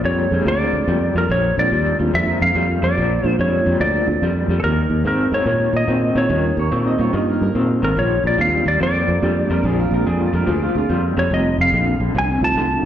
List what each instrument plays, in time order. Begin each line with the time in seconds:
0.04 fingered electric bass F2, clean electric guitar A#2 G3, electric slide guitar C#5
0.31 fingered electric bass F2, clean electric guitar A#2 G3, reed electric piano G#3 A#3 C4 D4 G#4
0.46 fingered electric bass D2, clean electric guitar A#2 F3, electric slide guitar D5
0.73 fingered electric bass D2
0.88 fingered electric bass F2, clean electric guitar A#2 G3
1.15 fingered electric bass F2, clean electric guitar A#2 G3, electric slide guitar A#4
1.29 fingered electric bass A#1, clean electric guitar A#2 F3, electric slide guitar C#5
1.58 fingered electric bass A#1, reed electric piano G#3 A#3 C4 D4 F4, electric slide guitar D5
1.72 fingered electric bass D#2, clean electric guitar A#2 G3
1.98 fingered electric bass D#2, clean electric guitar A#2 G3, reed electric piano G#3 A#3 C4 D4 F4
2.14 fingered electric bass F2, clean electric guitar A#2 F3, electric slide guitar E5
2.41 fingered electric bass F2, electric slide guitar F5
2.55 fingered electric bass F2, clean electric guitar A#2 G3
2.82 fingered electric bass F2, clean electric guitar A#2 G3, electric slide guitar D5
2.97 fingered electric bass A#1, clean electric guitar A#2 F3
3.23 fingered electric bass A#1, reed electric piano G#3 A#3 D4 F4
3.28 electric slide guitar C5
3.39 fingered electric bass F2, clean electric guitar A#2 G3, electric slide guitar C#5
3.66 fingered electric bass F2, clean electric guitar A#2 G3
3.80 fingered electric bass D2, clean electric guitar A#2 F3, electric slide guitar D5
4.06 fingered electric bass D2, reed electric piano G#3 A#3 C4 D4 F4
4.22 fingered electric bass F2, clean electric guitar A#2 G3
4.48 fingered electric bass F2, clean electric guitar A#2 G3
4.60 fingered electric bass D#2, electric slide guitar A4
4.64 clean electric guitar D#3 A#3, electric slide guitar A#4
4.90 fingered electric bass D#2
5.04 fingered electric bass G#2, clean electric guitar D#3 C4, electric slide guitar A#4
5.32 fingered electric bass G#2, clean electric guitar D#3 C4, electric slide guitar C#5
5.46 fingered electric bass A#2, clean electric guitar D#3 A#3
5.73 fingered electric bass A#2, electric slide guitar D#5
5.88 fingered electric bass A#2, clean electric guitar D#3 C4
6.15 fingered electric bass A#2, clean electric guitar D#3 C4, electric slide guitar C#5
6.29 fingered electric bass D#2, clean electric guitar D#3 A#3, reed electric piano G3 A#3 C#4 D#4 F4
6.57 fingered electric bass D#2, clean electric guitar C#5
6.72 fingered electric bass A#2, clean electric guitar D#3 C4
6.88 clean electric guitar D#5
6.98 fingered electric bass A#2, clean electric guitar D#3 C4 C#5, reed electric piano G3 A#3 C#4 D#4 F4
7.13 fingered electric bass G2, clean electric guitar D#3 A#3 D#5
7.30 clean electric guitar A#4
7.41 fingered electric bass G2, clean electric guitar A#4
7.55 fingered electric bass A#2, clean electric guitar D#3 C4
7.82 fingered electric bass G#1, clean electric guitar D#3 C4, electric slide guitar A#4
7.96 fingered electric bass A#1, clean electric guitar A#2 F3, electric slide guitar C#5
8.24 fingered electric bass A#1, electric slide guitar D5
8.38 fingered electric bass D#2, clean electric guitar A#2 G3, reed electric piano G#3 A#3 C4 D4 F4, electric slide guitar F5
8.66 fingered electric bass D#2, clean electric guitar A#2 G3, electric slide guitar D5
8.81 fingered electric bass F2, clean electric guitar A#2 F3, electric slide guitar D5
9.08 fingered electric bass F2
9.22 fingered electric bass F2, clean electric guitar A#2 G3, reed electric piano G#3 A#3 C4 D4 G4
9.50 fingered electric bass F2, clean electric guitar A#2 G3 A#4
9.64 fingered electric bass A#1, clean electric guitar A#2 F3 G#4
9.80 clean electric guitar F4
9.90 fingered electric bass A#1, reed electric piano G#3 A#3 C4 D4 F4, clean electric guitar A#4
10.06 fingered electric bass F2, clean electric guitar A#2 G3 G#4
10.20 clean electric guitar F4
10.33 fingered electric bass F2, clean electric guitar A#2 G3 A#4
10.47 fingered electric bass D2, clean electric guitar A#2 F3 G#4
10.63 clean electric guitar F4
10.75 fingered electric bass D2, reed electric piano G#3 A#3 C4 D4 G#4, clean electric guitar F4
10.89 fingered electric bass F2, clean electric guitar A#2 G3
11.17 fingered electric bass F2, clean electric guitar A#2 G3, electric slide guitar C#5
11.31 fingered electric bass F1, clean electric guitar F2 C3, reed electric piano G3 A3 C4 D#4 F4, electric slide guitar D#5
11.58 fingered electric bass F1, electric slide guitar F5
11.72 fingered electric bass A#1, clean electric guitar F2 D3
12.00 fingered electric bass A#1, clean electric guitar F2 D3
12.15 fingered electric bass C2, clean electric guitar F2 C3, electric slide guitar G#5
12.41 fingered electric bass C2, reed electric piano G3 A3 C4 D#4 F4, electric slide guitar A5
12.56 fingered electric bass C2, clean electric guitar F2 D3